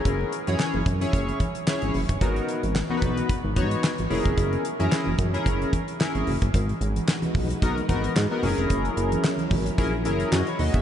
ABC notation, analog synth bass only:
X:1
M:4/4
L:1/16
Q:"Swing 16ths" 1/4=111
K:F#mix
V:1 name="Analog synth bass" clef=bass
F,,,2 z F,, z F,,, F,,2 F,,,2 z3 G,,, F,,, =G,,, | G,,,2 z G,,,2 z B,,,2 z G,,, G,,2 z G,,, F,,, ^E,,, | F,,,2 z F,, z F,,, F,,2 F,,,2 z3 G,,, F,,, =G,,, | G,,,2 G,,,2 z2 B,,,2 B,,,2 G,,,2 G,, z F,,, ^E,,, |
F,,,2 F,,,2 z2 G,,,2 A,,,2 F,,,2 F,, z D,, =G,,, |]